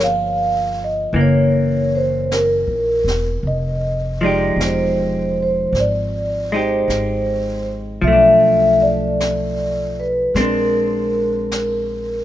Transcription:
0.00 1.09 G1 medium
0.00 1.14 F3 soft
0.00 1.15 A#3 soft
0.00 1.17 C#4 soft
0.00 0.76 F5 medium
0.00 brush sweep soft
0.00 snare soft
0.00 hi-hat pedal soft
0.84 1.19 D#5 medium
1.13 2.63 F#1 medium
1.13 3.44 E3 soft
1.13 3.45 A#3 soft
1.13 brush sweep soft
1.21 1.97 C#5 medium
1.95 2.29 C5 medium
2.31 3.23 A#4 medium
2.31 brush sweep soft
2.31 snare soft
2.31 hi-hat pedal soft
2.67 3.03 A#1 soft
3.04 3.41 E1 medium
3.04 snare soft
3.43 4.54 F1 medium
3.43 brush sweep soft
3.47 4.25 D#5 medium
4.21 8.00 F3 soft
4.21 6.51 G#3 soft
4.21 6.53 D#4 soft
4.21 4.61 D5 medium
4.26 6.55 G4 soft
4.56 5.68 E1 medium
4.60 5.41 C5 medium
4.60 brush sweep soft
4.60 snare soft
4.60 hi-hat pedal soft
5.43 5.77 C5 medium
5.72 6.84 G#1 medium
5.72 brush sweep soft
5.72 snare soft
5.80 6.51 D5 medium
6.52 8.04 G#3 soft
6.52 8.05 D#4 soft
6.52 8.06 G4 soft
6.52 7.65 C5 medium
6.88 7.99 G#1 medium
6.88 brush sweep soft
6.88 snare soft
6.88 hi-hat pedal soft
8.02 10.29 B1 medium
8.02 10.33 F3 soft
8.02 8.83 E5 medium
8.02 brush sweep soft
8.08 10.36 A3 soft
8.12 10.39 D4 soft
8.82 10.02 D5 medium
9.20 brush sweep soft
9.20 snare soft
9.20 hi-hat pedal soft
10.00 10.32 B4 medium
10.34 12.24 A#1 medium
10.34 12.24 G#3 soft
10.34 12.24 C4 soft
10.34 10.37 G#4 soft
10.34 12.24 A#4 medium
10.34 brush sweep soft
10.34 snare soft
10.40 12.24 D4 soft
11.52 brush sweep soft
11.52 snare soft
11.52 hi-hat pedal soft

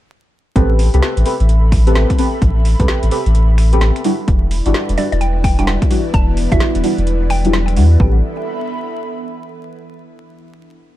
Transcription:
0.56 0.89 A1 loud
0.56 0.88 C4 loud
0.56 0.88 G4 loud
0.56 0.88 A4 medium
0.56 4.87 A4 medium
0.56 0.88 B4 loud
0.56 kick loud
0.56 closed hi-hat medium
0.74 5.29 E5 medium
0.79 open hi-hat loud
0.94 1.01 C2 medium
0.94 1.24 C4 medium
0.94 1.24 G4 medium
0.94 1.23 A4 medium
0.94 1.24 B4 loud
0.94 closed hi-hat medium
1.02 snare loud
1.17 1.24 A1 medium
1.17 closed hi-hat medium
1.24 1.35 C4 medium
1.24 1.35 G4 medium
1.24 1.35 A4 medium
1.24 1.35 B4 medium
1.24 4.84 B5 medium
1.24 open hi-hat loud
1.40 2.05 A1 loud
1.40 closed hi-hat soft
1.49 closed hi-hat medium
1.72 finger snap medium
1.72 kick loud
1.72 open hi-hat loud
1.87 2.16 C4 medium
1.87 2.16 G4 medium
1.87 2.16 A4 medium
1.87 2.17 B4 loud
1.87 closed hi-hat medium
1.95 snare loud
2.10 finger snap soft
2.10 kick loud
2.10 closed hi-hat medium
2.18 2.28 C4 medium
2.18 2.28 G4 medium
2.18 2.28 A4 medium
2.18 2.28 B4 medium
2.18 open hi-hat loud
2.42 2.75 A1 loud
2.42 kick loud
2.42 closed hi-hat medium
2.65 open hi-hat loud
2.80 2.87 C2 medium
2.80 3.09 C4 medium
2.80 3.10 G4 medium
2.80 3.09 A4 medium
2.80 3.10 B4 medium
2.80 kick loud
2.80 closed hi-hat medium
2.88 snare loud
3.03 3.10 A1 medium
3.03 closed hi-hat medium
3.11 3.21 C4 medium
3.11 3.21 G4 medium
3.11 3.21 A4 medium
3.11 3.21 B4 medium
3.11 open hi-hat loud
3.26 3.91 A1 loud
3.26 closed hi-hat soft
3.35 closed hi-hat medium
3.58 finger snap medium
3.58 open hi-hat loud
3.73 4.03 C4 medium
3.73 4.03 G4 medium
3.73 4.03 A4 medium
3.73 4.03 B4 loud
3.73 closed hi-hat medium
3.81 snare loud
3.96 finger snap soft
3.96 closed hi-hat medium
4.04 4.14 G3 medium
4.04 4.14 D4 medium
4.04 8.00 E4 loud
4.04 4.14 E4 medium
4.04 4.14 F#4 medium
4.04 open hi-hat loud
4.28 4.61 E1 loud
4.28 7.96 E3 medium
4.28 7.96 B3 medium
4.28 7.96 D4 medium
4.28 7.96 E4 loud
4.28 kick loud
4.28 closed hi-hat medium
4.46 8.00 D5 medium
4.51 open hi-hat loud
4.57 8.00 B4 medium
4.66 4.73 G1 medium
4.66 4.96 G3 medium
4.66 4.96 D4 medium
4.66 4.96 E4 medium
4.66 4.96 F#4 medium
4.66 closed hi-hat medium
4.74 snare loud
4.89 4.96 E1 medium
4.89 closed hi-hat medium
4.98 5.07 G3 medium
4.98 5.07 D4 medium
4.98 5.07 E4 medium
4.98 5.07 F#4 medium
4.98 5.07 D5 medium
4.98 open hi-hat loud
5.12 5.77 E1 loud
5.12 5.18 D5 medium
5.12 closed hi-hat soft
5.21 5.37 G5 loud
5.21 closed hi-hat medium
5.44 5.54 G5 medium
5.44 finger snap medium
5.44 kick loud
5.44 open hi-hat loud
5.59 5.89 G3 medium
5.59 5.89 D4 medium
5.59 5.89 E4 medium
5.59 5.89 F#4 loud
5.59 5.64 G5 medium
5.59 closed hi-hat medium
5.67 snare loud
5.82 finger snap soft
5.82 kick loud
5.82 closed hi-hat medium
5.91 6.00 G3 medium
5.91 6.00 D4 medium
5.91 6.00 E4 medium
5.91 6.00 F#4 loud
5.91 open hi-hat loud
6.14 6.47 E1 loud
6.14 6.31 A5 medium
6.14 kick loud
6.14 closed hi-hat medium
6.37 open hi-hat loud
6.52 6.59 G1 medium
6.52 6.82 G3 medium
6.52 6.82 D4 medium
6.52 6.82 E4 medium
6.52 6.82 F#4 medium
6.52 6.98 E5 loud
6.52 kick loud
6.52 closed hi-hat medium
6.60 snare loud
6.75 6.82 E1 medium
6.75 closed hi-hat medium
6.84 6.93 G3 medium
6.84 6.93 D4 medium
6.84 6.93 E4 medium
6.84 6.93 F#4 medium
6.84 open hi-hat loud
6.98 7.78 E1 loud
6.98 closed hi-hat soft
7.07 closed hi-hat medium
7.30 7.97 G5 medium
7.30 finger snap medium
7.30 open hi-hat loud
7.45 7.75 F#3 loud
7.45 7.75 G3 medium
7.45 7.75 D4 medium
7.45 7.75 E4 medium
7.45 closed hi-hat medium
7.53 snare loud
7.68 finger snap soft
7.68 closed hi-hat medium
7.77 7.96 E2 loud
7.77 7.86 G3 medium
7.77 7.86 D4 medium
7.77 7.86 E4 medium
7.77 7.86 F#4 loud
7.77 open hi-hat loud
8.00 8.22 A1 loud
8.00 8.18 C4 medium
8.00 8.18 G4 medium
8.00 9.82 A4 medium
8.00 8.18 A4 medium
8.00 8.18 B4 loud
8.00 kick loud
8.09 9.82 E5 medium
8.16 9.82 B5 medium

